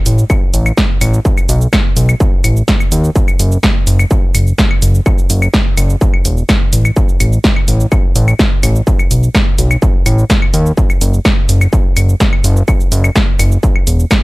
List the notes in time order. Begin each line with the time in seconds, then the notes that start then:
0.06 A1, closed hi-hat, shaker
0.18 shaker
0.30 kick, claves, shaker
0.54 A1, closed hi-hat, shaker
0.66 claves, shaker
0.77 kick, snare, shaker
1.01 A1, closed hi-hat, claves, shaker
1.14 shaker
1.25 kick, shaker
1.38 claves, shaker
1.49 B1, closed hi-hat, shaker
1.61 shaker
1.73 kick, snare, claves, shaker
1.97 B1, closed hi-hat, shaker
2.09 claves, shaker
2.20 kick, shaker
2.44 A1, closed hi-hat, claves, shaker
2.57 shaker
2.68 kick, snare, closed hi-hat, shaker
2.80 claves, shaker
2.92 D#2, closed hi-hat, shaker
3.04 shaker
3.16 kick, shaker
3.28 claves, shaker
3.39 F#1, closed hi-hat, shaker
3.52 shaker
3.63 kick, snare, claves, shaker
3.87 F#1, closed hi-hat, shaker
3.99 claves, shaker
4.11 kick, shaker
4.35 F#1, closed hi-hat, claves, shaker
4.47 shaker
4.58 kick, snare, shaker
4.71 claves
4.82 F#1, closed hi-hat, shaker
4.95 shaker
5.06 kick, claves, shaker
5.18 shaker
5.30 F#1, closed hi-hat, shaker
5.42 claves, shaker
5.54 kick, snare, shaker
5.77 F#1, closed hi-hat, claves, shaker
5.90 shaker
6.01 kick, shaker
6.14 claves
6.25 E1, closed hi-hat, shaker
6.37 shaker
6.49 kick, snare, closed hi-hat, claves, shaker
6.73 A1, closed hi-hat, shaker
6.85 claves, shaker
6.96 kick, shaker
7.09 shaker
7.20 A1, closed hi-hat, claves, shaker
7.33 shaker
7.44 kick, snare, shaker
7.56 claves
7.68 A1, closed hi-hat, shaker
7.80 shaker
7.92 kick, claves, shaker
8.16 A1, closed hi-hat, shaker
8.28 claves, shaker
8.39 kick, snare, shaker
8.63 A1, closed hi-hat, claves, shaker
8.76 shaker
8.87 kick, shaker
8.99 claves, shaker
9.11 B1, closed hi-hat, shaker
9.23 shaker
9.35 kick, snare, claves, shaker
9.58 B1, closed hi-hat, shaker
9.71 claves, shaker
9.82 kick, shaker
10.06 A1, closed hi-hat, claves, shaker
10.18 shaker
10.30 kick, snare, closed hi-hat, shaker
10.42 claves
10.54 D#2, closed hi-hat, shaker
10.66 shaker
10.77 kick, shaker
10.90 claves, shaker
11.01 F#1, closed hi-hat, shaker
11.14 shaker
11.25 kick, snare, claves, shaker
11.49 F#1, closed hi-hat, shaker
11.61 claves, shaker
11.73 kick, shaker
11.97 F#1, closed hi-hat, claves, shaker
12.09 shaker
12.20 kick, snare, shaker
12.33 claves
12.44 F#1, closed hi-hat, shaker
12.57 shaker
12.68 kick, claves, shaker
12.80 shaker
12.92 F#1, closed hi-hat, shaker
13.04 claves, shaker
13.16 kick, snare, shaker
13.39 F#1, closed hi-hat, claves, shaker
13.52 shaker
13.63 kick, shaker
13.76 claves
13.87 E1, closed hi-hat, shaker
13.99 shaker
14.11 kick, snare, closed hi-hat, claves, shaker